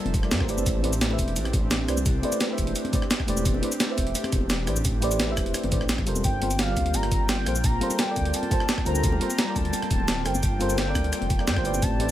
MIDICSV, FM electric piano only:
0, 0, Header, 1, 2, 480
1, 0, Start_track
1, 0, Tempo, 348837
1, 912, Time_signature, 4, 2, 24, 8
1, 16666, End_track
2, 0, Start_track
2, 0, Title_t, "FM electric piano"
2, 0, Program_c, 0, 5
2, 0, Note_on_c, 0, 55, 90
2, 0, Note_on_c, 0, 65, 80
2, 0, Note_on_c, 0, 69, 83
2, 0, Note_on_c, 0, 70, 81
2, 0, Note_on_c, 0, 74, 98
2, 140, Note_off_c, 0, 55, 0
2, 151, Note_off_c, 0, 65, 0
2, 161, Note_off_c, 0, 69, 0
2, 172, Note_off_c, 0, 70, 0
2, 182, Note_off_c, 0, 74, 0
2, 294, Note_on_c, 0, 55, 77
2, 304, Note_on_c, 0, 65, 74
2, 315, Note_on_c, 0, 69, 72
2, 326, Note_on_c, 0, 70, 74
2, 335, Note_on_c, 0, 74, 87
2, 515, Note_off_c, 0, 55, 0
2, 520, Note_off_c, 0, 65, 0
2, 526, Note_off_c, 0, 69, 0
2, 532, Note_off_c, 0, 70, 0
2, 532, Note_on_c, 0, 55, 89
2, 536, Note_off_c, 0, 74, 0
2, 543, Note_on_c, 0, 65, 81
2, 553, Note_on_c, 0, 69, 82
2, 563, Note_on_c, 0, 70, 83
2, 573, Note_on_c, 0, 72, 101
2, 632, Note_off_c, 0, 55, 0
2, 637, Note_off_c, 0, 65, 0
2, 643, Note_off_c, 0, 69, 0
2, 648, Note_off_c, 0, 70, 0
2, 649, Note_on_c, 0, 57, 93
2, 653, Note_off_c, 0, 72, 0
2, 656, Note_on_c, 0, 64, 87
2, 664, Note_on_c, 0, 67, 87
2, 672, Note_on_c, 0, 71, 86
2, 680, Note_on_c, 0, 72, 89
2, 690, Note_on_c, 0, 74, 104
2, 1113, Note_off_c, 0, 57, 0
2, 1116, Note_off_c, 0, 64, 0
2, 1120, Note_off_c, 0, 67, 0
2, 1124, Note_off_c, 0, 71, 0
2, 1128, Note_off_c, 0, 72, 0
2, 1128, Note_on_c, 0, 57, 97
2, 1133, Note_off_c, 0, 74, 0
2, 1136, Note_on_c, 0, 64, 87
2, 1145, Note_on_c, 0, 67, 85
2, 1153, Note_on_c, 0, 71, 88
2, 1161, Note_on_c, 0, 72, 88
2, 1169, Note_on_c, 0, 74, 104
2, 1237, Note_off_c, 0, 57, 0
2, 1241, Note_off_c, 0, 64, 0
2, 1245, Note_off_c, 0, 67, 0
2, 1250, Note_off_c, 0, 71, 0
2, 1254, Note_off_c, 0, 72, 0
2, 1258, Note_off_c, 0, 74, 0
2, 1471, Note_on_c, 0, 57, 84
2, 1488, Note_on_c, 0, 64, 79
2, 1506, Note_on_c, 0, 67, 76
2, 1522, Note_on_c, 0, 71, 78
2, 1541, Note_on_c, 0, 72, 76
2, 1556, Note_on_c, 0, 76, 94
2, 2542, Note_off_c, 0, 57, 0
2, 2550, Note_off_c, 0, 64, 0
2, 2559, Note_off_c, 0, 67, 0
2, 2567, Note_off_c, 0, 71, 0
2, 2569, Note_on_c, 0, 57, 81
2, 2576, Note_off_c, 0, 72, 0
2, 2578, Note_on_c, 0, 64, 76
2, 2584, Note_off_c, 0, 76, 0
2, 2586, Note_on_c, 0, 67, 75
2, 2593, Note_on_c, 0, 71, 75
2, 2602, Note_on_c, 0, 72, 73
2, 2611, Note_on_c, 0, 74, 91
2, 2678, Note_off_c, 0, 57, 0
2, 2682, Note_off_c, 0, 64, 0
2, 2686, Note_off_c, 0, 67, 0
2, 2690, Note_off_c, 0, 71, 0
2, 2694, Note_off_c, 0, 72, 0
2, 2699, Note_off_c, 0, 74, 0
2, 3050, Note_on_c, 0, 57, 101
2, 3060, Note_on_c, 0, 64, 91
2, 3067, Note_on_c, 0, 67, 91
2, 3077, Note_on_c, 0, 71, 94
2, 3084, Note_on_c, 0, 72, 91
2, 3093, Note_on_c, 0, 74, 113
2, 3380, Note_off_c, 0, 57, 0
2, 3396, Note_off_c, 0, 64, 0
2, 3397, Note_on_c, 0, 57, 90
2, 3404, Note_off_c, 0, 67, 0
2, 3409, Note_off_c, 0, 71, 0
2, 3413, Note_off_c, 0, 72, 0
2, 3413, Note_on_c, 0, 64, 81
2, 3417, Note_off_c, 0, 74, 0
2, 3430, Note_on_c, 0, 67, 81
2, 3445, Note_on_c, 0, 71, 85
2, 3463, Note_on_c, 0, 72, 84
2, 3479, Note_on_c, 0, 76, 101
2, 3984, Note_off_c, 0, 57, 0
2, 3992, Note_off_c, 0, 64, 0
2, 4001, Note_off_c, 0, 67, 0
2, 4008, Note_off_c, 0, 71, 0
2, 4011, Note_on_c, 0, 57, 88
2, 4018, Note_off_c, 0, 72, 0
2, 4020, Note_on_c, 0, 64, 82
2, 4026, Note_off_c, 0, 76, 0
2, 4030, Note_on_c, 0, 67, 83
2, 4037, Note_on_c, 0, 71, 83
2, 4046, Note_on_c, 0, 72, 81
2, 4054, Note_on_c, 0, 74, 101
2, 4175, Note_off_c, 0, 57, 0
2, 4179, Note_off_c, 0, 64, 0
2, 4184, Note_off_c, 0, 67, 0
2, 4188, Note_off_c, 0, 71, 0
2, 4192, Note_off_c, 0, 72, 0
2, 4196, Note_off_c, 0, 74, 0
2, 4491, Note_on_c, 0, 57, 97
2, 4500, Note_on_c, 0, 64, 92
2, 4507, Note_on_c, 0, 67, 91
2, 4516, Note_on_c, 0, 71, 89
2, 4525, Note_on_c, 0, 72, 92
2, 4533, Note_on_c, 0, 74, 112
2, 4954, Note_off_c, 0, 57, 0
2, 4958, Note_off_c, 0, 64, 0
2, 4962, Note_off_c, 0, 67, 0
2, 4966, Note_off_c, 0, 71, 0
2, 4970, Note_on_c, 0, 57, 95
2, 4971, Note_off_c, 0, 72, 0
2, 4975, Note_off_c, 0, 74, 0
2, 4979, Note_on_c, 0, 64, 89
2, 4988, Note_on_c, 0, 67, 86
2, 4997, Note_on_c, 0, 71, 90
2, 5003, Note_on_c, 0, 72, 87
2, 5014, Note_on_c, 0, 74, 104
2, 5078, Note_off_c, 0, 57, 0
2, 5083, Note_off_c, 0, 64, 0
2, 5087, Note_off_c, 0, 67, 0
2, 5092, Note_off_c, 0, 71, 0
2, 5095, Note_off_c, 0, 72, 0
2, 5100, Note_off_c, 0, 74, 0
2, 5315, Note_on_c, 0, 57, 83
2, 5331, Note_on_c, 0, 64, 79
2, 5348, Note_on_c, 0, 67, 77
2, 5364, Note_on_c, 0, 71, 76
2, 5381, Note_on_c, 0, 72, 80
2, 5398, Note_on_c, 0, 76, 96
2, 6383, Note_off_c, 0, 57, 0
2, 6392, Note_off_c, 0, 64, 0
2, 6400, Note_off_c, 0, 67, 0
2, 6408, Note_off_c, 0, 71, 0
2, 6409, Note_on_c, 0, 57, 82
2, 6417, Note_off_c, 0, 72, 0
2, 6418, Note_on_c, 0, 64, 76
2, 6425, Note_off_c, 0, 76, 0
2, 6426, Note_on_c, 0, 67, 74
2, 6434, Note_on_c, 0, 71, 77
2, 6443, Note_on_c, 0, 72, 76
2, 6451, Note_on_c, 0, 74, 89
2, 6518, Note_off_c, 0, 57, 0
2, 6522, Note_off_c, 0, 64, 0
2, 6526, Note_off_c, 0, 67, 0
2, 6530, Note_off_c, 0, 71, 0
2, 6535, Note_off_c, 0, 72, 0
2, 6538, Note_off_c, 0, 74, 0
2, 6892, Note_on_c, 0, 57, 101
2, 6900, Note_on_c, 0, 64, 95
2, 6908, Note_on_c, 0, 67, 93
2, 6916, Note_on_c, 0, 71, 93
2, 6925, Note_on_c, 0, 72, 90
2, 6934, Note_on_c, 0, 74, 110
2, 7215, Note_off_c, 0, 57, 0
2, 7232, Note_off_c, 0, 64, 0
2, 7232, Note_on_c, 0, 57, 89
2, 7245, Note_off_c, 0, 67, 0
2, 7249, Note_off_c, 0, 71, 0
2, 7249, Note_on_c, 0, 64, 84
2, 7253, Note_off_c, 0, 72, 0
2, 7258, Note_off_c, 0, 74, 0
2, 7266, Note_on_c, 0, 67, 80
2, 7282, Note_on_c, 0, 71, 81
2, 7299, Note_on_c, 0, 72, 82
2, 7316, Note_on_c, 0, 76, 100
2, 7822, Note_off_c, 0, 57, 0
2, 7830, Note_off_c, 0, 64, 0
2, 7839, Note_off_c, 0, 67, 0
2, 7847, Note_off_c, 0, 71, 0
2, 7849, Note_on_c, 0, 57, 88
2, 7856, Note_off_c, 0, 72, 0
2, 7858, Note_on_c, 0, 64, 82
2, 7864, Note_off_c, 0, 76, 0
2, 7866, Note_on_c, 0, 67, 80
2, 7874, Note_on_c, 0, 71, 82
2, 7883, Note_on_c, 0, 72, 82
2, 7891, Note_on_c, 0, 74, 100
2, 8014, Note_off_c, 0, 57, 0
2, 8018, Note_off_c, 0, 64, 0
2, 8022, Note_off_c, 0, 67, 0
2, 8026, Note_off_c, 0, 71, 0
2, 8031, Note_off_c, 0, 72, 0
2, 8035, Note_off_c, 0, 74, 0
2, 8329, Note_on_c, 0, 55, 99
2, 8338, Note_on_c, 0, 65, 90
2, 8349, Note_on_c, 0, 69, 90
2, 8360, Note_on_c, 0, 70, 90
2, 8371, Note_on_c, 0, 72, 113
2, 8789, Note_off_c, 0, 55, 0
2, 8797, Note_off_c, 0, 65, 0
2, 8803, Note_off_c, 0, 69, 0
2, 8806, Note_on_c, 0, 55, 94
2, 8808, Note_off_c, 0, 70, 0
2, 8814, Note_off_c, 0, 72, 0
2, 8816, Note_on_c, 0, 65, 88
2, 8826, Note_on_c, 0, 69, 87
2, 8838, Note_on_c, 0, 70, 89
2, 8849, Note_on_c, 0, 72, 104
2, 8916, Note_off_c, 0, 55, 0
2, 8921, Note_off_c, 0, 65, 0
2, 8926, Note_off_c, 0, 69, 0
2, 8932, Note_off_c, 0, 70, 0
2, 8937, Note_off_c, 0, 72, 0
2, 9152, Note_on_c, 0, 55, 85
2, 9173, Note_on_c, 0, 65, 78
2, 9193, Note_on_c, 0, 67, 79
2, 9214, Note_on_c, 0, 70, 79
2, 9235, Note_on_c, 0, 74, 96
2, 10222, Note_off_c, 0, 55, 0
2, 10232, Note_off_c, 0, 65, 0
2, 10243, Note_off_c, 0, 67, 0
2, 10250, Note_on_c, 0, 55, 84
2, 10253, Note_off_c, 0, 70, 0
2, 10260, Note_on_c, 0, 65, 77
2, 10264, Note_off_c, 0, 74, 0
2, 10270, Note_on_c, 0, 69, 76
2, 10282, Note_on_c, 0, 70, 74
2, 10292, Note_on_c, 0, 72, 90
2, 10358, Note_off_c, 0, 55, 0
2, 10363, Note_off_c, 0, 65, 0
2, 10368, Note_off_c, 0, 69, 0
2, 10374, Note_off_c, 0, 70, 0
2, 10379, Note_off_c, 0, 72, 0
2, 10733, Note_on_c, 0, 55, 101
2, 10742, Note_on_c, 0, 65, 94
2, 10752, Note_on_c, 0, 69, 93
2, 10763, Note_on_c, 0, 70, 93
2, 10774, Note_on_c, 0, 72, 112
2, 11061, Note_off_c, 0, 55, 0
2, 11077, Note_on_c, 0, 55, 91
2, 11082, Note_off_c, 0, 65, 0
2, 11087, Note_off_c, 0, 69, 0
2, 11092, Note_off_c, 0, 70, 0
2, 11098, Note_off_c, 0, 72, 0
2, 11098, Note_on_c, 0, 65, 84
2, 11118, Note_on_c, 0, 69, 83
2, 11139, Note_on_c, 0, 70, 83
2, 11162, Note_on_c, 0, 74, 100
2, 11665, Note_off_c, 0, 55, 0
2, 11675, Note_off_c, 0, 65, 0
2, 11685, Note_off_c, 0, 69, 0
2, 11692, Note_on_c, 0, 55, 92
2, 11695, Note_off_c, 0, 70, 0
2, 11702, Note_on_c, 0, 65, 84
2, 11707, Note_off_c, 0, 74, 0
2, 11712, Note_on_c, 0, 69, 84
2, 11723, Note_on_c, 0, 70, 85
2, 11734, Note_on_c, 0, 72, 100
2, 11855, Note_off_c, 0, 55, 0
2, 11860, Note_off_c, 0, 65, 0
2, 11865, Note_off_c, 0, 69, 0
2, 11870, Note_off_c, 0, 70, 0
2, 11876, Note_off_c, 0, 72, 0
2, 12172, Note_on_c, 0, 55, 98
2, 12181, Note_on_c, 0, 65, 94
2, 12192, Note_on_c, 0, 69, 93
2, 12204, Note_on_c, 0, 70, 89
2, 12215, Note_on_c, 0, 72, 108
2, 12634, Note_off_c, 0, 55, 0
2, 12639, Note_off_c, 0, 65, 0
2, 12644, Note_off_c, 0, 69, 0
2, 12650, Note_off_c, 0, 70, 0
2, 12650, Note_on_c, 0, 55, 96
2, 12656, Note_off_c, 0, 72, 0
2, 12661, Note_on_c, 0, 65, 86
2, 12672, Note_on_c, 0, 69, 90
2, 12681, Note_on_c, 0, 70, 87
2, 12694, Note_on_c, 0, 72, 108
2, 12758, Note_off_c, 0, 55, 0
2, 12764, Note_off_c, 0, 65, 0
2, 12769, Note_off_c, 0, 69, 0
2, 12774, Note_off_c, 0, 70, 0
2, 12780, Note_off_c, 0, 72, 0
2, 12992, Note_on_c, 0, 55, 87
2, 13013, Note_on_c, 0, 65, 78
2, 13034, Note_on_c, 0, 69, 78
2, 13055, Note_on_c, 0, 70, 77
2, 13076, Note_on_c, 0, 74, 94
2, 14062, Note_off_c, 0, 55, 0
2, 14073, Note_off_c, 0, 65, 0
2, 14083, Note_off_c, 0, 69, 0
2, 14089, Note_on_c, 0, 55, 81
2, 14093, Note_off_c, 0, 70, 0
2, 14099, Note_on_c, 0, 65, 76
2, 14104, Note_off_c, 0, 74, 0
2, 14110, Note_on_c, 0, 69, 75
2, 14120, Note_on_c, 0, 70, 77
2, 14131, Note_on_c, 0, 72, 90
2, 14198, Note_off_c, 0, 55, 0
2, 14203, Note_off_c, 0, 65, 0
2, 14208, Note_off_c, 0, 69, 0
2, 14213, Note_off_c, 0, 70, 0
2, 14218, Note_off_c, 0, 72, 0
2, 14567, Note_on_c, 0, 55, 100
2, 14578, Note_on_c, 0, 65, 96
2, 14589, Note_on_c, 0, 69, 95
2, 14598, Note_on_c, 0, 70, 91
2, 14610, Note_on_c, 0, 72, 112
2, 14896, Note_off_c, 0, 55, 0
2, 14913, Note_on_c, 0, 55, 90
2, 14920, Note_off_c, 0, 65, 0
2, 14925, Note_off_c, 0, 69, 0
2, 14930, Note_off_c, 0, 70, 0
2, 14934, Note_on_c, 0, 65, 80
2, 14936, Note_off_c, 0, 72, 0
2, 14954, Note_on_c, 0, 69, 82
2, 14975, Note_on_c, 0, 70, 85
2, 14997, Note_on_c, 0, 74, 100
2, 15502, Note_off_c, 0, 55, 0
2, 15513, Note_off_c, 0, 65, 0
2, 15523, Note_off_c, 0, 69, 0
2, 15533, Note_off_c, 0, 70, 0
2, 15545, Note_off_c, 0, 74, 0
2, 15653, Note_on_c, 0, 55, 79
2, 15665, Note_on_c, 0, 65, 76
2, 15674, Note_on_c, 0, 69, 74
2, 15684, Note_on_c, 0, 70, 73
2, 15695, Note_on_c, 0, 74, 87
2, 15875, Note_off_c, 0, 55, 0
2, 15881, Note_off_c, 0, 65, 0
2, 15885, Note_off_c, 0, 69, 0
2, 15890, Note_off_c, 0, 70, 0
2, 15891, Note_on_c, 0, 55, 92
2, 15896, Note_off_c, 0, 74, 0
2, 15903, Note_on_c, 0, 65, 84
2, 15913, Note_on_c, 0, 69, 83
2, 15925, Note_on_c, 0, 70, 84
2, 15935, Note_on_c, 0, 72, 102
2, 15992, Note_off_c, 0, 55, 0
2, 15998, Note_off_c, 0, 65, 0
2, 16002, Note_off_c, 0, 69, 0
2, 16008, Note_off_c, 0, 70, 0
2, 16011, Note_on_c, 0, 57, 95
2, 16014, Note_off_c, 0, 72, 0
2, 16017, Note_on_c, 0, 64, 86
2, 16027, Note_on_c, 0, 67, 88
2, 16034, Note_on_c, 0, 71, 88
2, 16043, Note_on_c, 0, 72, 85
2, 16051, Note_on_c, 0, 74, 109
2, 16474, Note_off_c, 0, 57, 0
2, 16477, Note_off_c, 0, 64, 0
2, 16482, Note_off_c, 0, 67, 0
2, 16485, Note_off_c, 0, 71, 0
2, 16488, Note_on_c, 0, 57, 94
2, 16490, Note_off_c, 0, 72, 0
2, 16494, Note_off_c, 0, 74, 0
2, 16496, Note_on_c, 0, 64, 86
2, 16504, Note_on_c, 0, 67, 88
2, 16513, Note_on_c, 0, 71, 86
2, 16521, Note_on_c, 0, 72, 87
2, 16530, Note_on_c, 0, 74, 102
2, 16597, Note_off_c, 0, 57, 0
2, 16601, Note_off_c, 0, 64, 0
2, 16605, Note_off_c, 0, 67, 0
2, 16610, Note_off_c, 0, 71, 0
2, 16613, Note_off_c, 0, 72, 0
2, 16618, Note_off_c, 0, 74, 0
2, 16666, End_track
0, 0, End_of_file